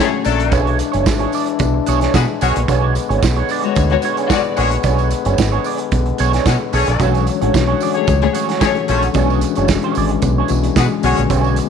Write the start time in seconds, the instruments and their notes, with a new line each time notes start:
Already playing: french horn section D3 F#3 C#4
0.00 string section A3 G#4 C#5
0.12 muted clean electric guitar stroke
0.25 fingered electric bass A#1, horn section F#3 A3 D4 A4, closed hi-hat, tambourine
0.39 muted clean electric guitar stroke, closed hi-hat
0.51 fingered electric bass B1, french horn section E3 G#3 D4, clean electric guitar D4 G#4 C#5, kick, closed hi-hat, tambourine
0.67 closed hi-hat
0.79 muted clean electric guitar stroke, closed hi-hat, tambourine
0.92 fingered electric bass F#1, clean electric guitar D4 G#4 C#5, closed hi-hat, tambourine
1.06 fingered electric bass G#1, muted clean electric guitar stroke, kick, snare, tambourine
1.19 clean electric guitar D4 G#4 C#5, closed hi-hat
1.32 clean electric guitar D4 G#4 D5, open hi-hat, tambourine
1.46 muted clean electric guitar stroke, closed hi-hat
1.59 fingered electric bass B1, muted clean electric guitar stroke, kick, closed hi-hat, tambourine
1.74 muted clean electric guitar stroke
1.86 fingered electric bass B1, clean electric guitar D4 G#4 C#5, closed hi-hat, tambourine
2.01 clean electric guitar D4 G#4 C#5, snare, closed hi-hat, tambourine
2.14 fingered electric bass B2, horn section G#3 B3 F#4 B4, kick, snare, tambourine
2.28 muted clean electric guitar stroke
2.41 fingered electric bass B1, french horn section D3 B3, horn section G#3 C#4 F#4 C#5, clean electric guitar D4 G#4 C#5, closed hi-hat, tambourine
2.56 fingered electric bass A#1, muted clean electric guitar stroke, closed hi-hat
2.68 fingered electric bass B1, clean electric guitar D4 G#4 C#5, kick, closed hi-hat, tambourine
2.95 muted clean electric guitar stroke, closed hi-hat, tambourine
3.09 fingered electric bass G#1, clean electric guitar D4 G#4 C#5, closed hi-hat
3.23 fingered electric bass B1, muted clean electric guitar stroke, kick, snare, tambourine
3.36 clean electric guitar D4 G#4 C#5, closed hi-hat
3.49 clean electric guitar D4 G#4 D5, open hi-hat, tambourine
3.63 string section G#3 F#4 C#5, muted clean electric guitar stroke, closed hi-hat
3.76 fingered electric bass D2, muted clean electric guitar stroke, kick, closed hi-hat, tambourine
3.90 string section G#3 F#4 C#5, muted clean electric guitar stroke, closed hi-hat
4.02 clean electric guitar D4 G#4 C#5, closed hi-hat, tambourine
4.17 clean electric guitar D4 G#4 C#5, closed hi-hat, tambourine
4.29 string section G#3 F#4 D5, horn section G#3 C#4 F#4 C#5, kick, snare, tambourine
4.44 muted clean electric guitar stroke, closed hi-hat
4.56 fingered electric bass A#1, horn section G#3 C#4 F#4 C#5, clean electric guitar D4 G#4 C#5, closed hi-hat, tambourine
4.71 muted clean electric guitar stroke, closed hi-hat, tambourine
4.83 fingered electric bass B1, clean electric guitar D4 G#4 C#5, kick, closed hi-hat, tambourine
4.98 closed hi-hat, tambourine
5.11 muted clean electric guitar stroke, closed hi-hat, tambourine
5.25 fingered electric bass F#1, clean electric guitar D4 G#4 C#5, closed hi-hat, tambourine
5.38 fingered electric bass G#1, muted clean electric guitar stroke, kick, snare, tambourine
5.52 clean electric guitar D4 G#4 C#5
5.64 clean electric guitar D4 G#4 D5, open hi-hat, tambourine
5.78 muted clean electric guitar stroke, closed hi-hat
5.91 fingered electric bass B1, muted clean electric guitar stroke, kick, closed hi-hat, tambourine
6.06 muted clean electric guitar stroke, closed hi-hat
6.18 fingered electric bass B1, clean electric guitar D4 G#4 C#5, closed hi-hat, tambourine
6.33 clean electric guitar D4 G#4 C#5, snare, closed hi-hat, tambourine
6.46 fingered electric bass B2, horn section G#3 C#4 F#4 C#5, kick, snare, tambourine
6.61 muted clean electric guitar stroke
6.73 fingered electric bass B1, horn section A3 C#4 G#4 C#5, clean electric guitar D4 G#4 C#5, open hi-hat, tambourine
6.87 fingered electric bass A#1, muted clean electric guitar stroke, closed hi-hat, tambourine
6.99 fingered electric bass B1, tine electric piano E3 G#3 C#4 D4 F#4, french horn section F#3 C#5, clean electric guitar F#4 G#4 C#5, kick, closed hi-hat, tambourine
7.15 closed hi-hat, tambourine
7.27 muted clean electric guitar stroke, closed hi-hat, tambourine
7.41 fingered electric bass A1, tine electric piano E3 G#3 C#4 D4 F#4, clean electric guitar F#4 G#4 C#5, closed hi-hat
7.54 fingered electric bass B1, muted clean electric guitar stroke, kick, snare, tambourine
7.67 clean electric guitar F#4 G#4 C#5
7.81 clean electric guitar F#4 G#4 D5, open hi-hat, tambourine
7.94 string section A3 G#4 C#5, muted clean electric guitar stroke, closed hi-hat
8.07 fingered electric bass C#2, muted clean electric guitar stroke, kick, closed hi-hat, tambourine
8.21 string section A3 G#4 C#5, muted clean electric guitar stroke, closed hi-hat
8.33 clean electric guitar F#4 G#4 C#5, closed hi-hat, tambourine
8.49 clean electric guitar F#4 G#4 C#5, snare, closed hi-hat
8.60 tine electric piano E3 C#4 D4 G#4 A4, horn section A3 C#4 G#4 C#5, string section A3 G#4 C#5, kick, snare, tambourine
8.75 muted clean electric guitar stroke, closed hi-hat
8.88 fingered electric bass A#1, horn section A3 C#4 G#4 C#5, clean electric guitar F#4 G#4 C#5, closed hi-hat, tambourine
9.02 muted clean electric guitar stroke, closed hi-hat, tambourine
9.14 fingered electric bass B1, tine electric piano E3 G#3 C#4 D4 F#4, french horn section E3 G#3, clean electric guitar D4 G#4 C#5, kick, closed hi-hat, tambourine
9.30 tambourine
9.41 muted clean electric guitar stroke, closed hi-hat, tambourine
9.55 fingered electric bass F#1, tine electric piano E3 G#3 C#4 D4 F#4, clean electric guitar D4 G#4 C#5, closed hi-hat, tambourine
9.68 muted clean electric guitar stroke, kick, snare, tambourine
9.82 clean electric guitar D4 G#4 C#5, closed hi-hat
9.95 fingered electric bass G#1, clean electric guitar D4 G#4 D5, open hi-hat, tambourine
10.09 muted clean electric guitar stroke, closed hi-hat
10.22 fingered electric bass B1, muted clean electric guitar stroke, kick, closed hi-hat, tambourine
10.38 clean electric guitar D4 G#4 C#5
10.48 fingered electric bass B1, tine electric piano E3 G#3 C#4 D4 F#4, muted clean electric guitar stroke, closed hi-hat, tambourine
10.63 muted clean electric guitar stroke, closed hi-hat, tambourine
10.76 fingered electric bass B2, horn section G#3 B3 F#4 B4, kick, snare, tambourine
10.92 muted clean electric guitar stroke
11.02 fingered electric bass B1, tine electric piano D3 G#3 B3 C#4 F#4, horn section G#3 C#4 F#4 C#5, french horn section B3, clean electric guitar D4 G#4 C#5, closed hi-hat, tambourine
11.17 fingered electric bass A#1, muted clean electric guitar stroke, closed hi-hat, tambourine
11.30 fingered electric bass B1, clean electric guitar D4 G#4 C#5, kick, closed hi-hat, tambourine
11.44 tambourine
11.56 muted clean electric guitar stroke, closed hi-hat, tambourine